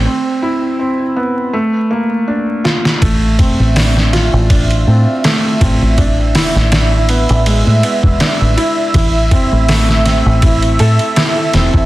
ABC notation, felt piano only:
X:1
M:4/4
L:1/8
Q:"Swing 16ths" 1/4=81
K:Ddor
V:1 name="Felt piano"
C E C B, A, _B, D F | A, C D F D C A, C | D E D B, ^G, B, D E | E C A, C E A E C |]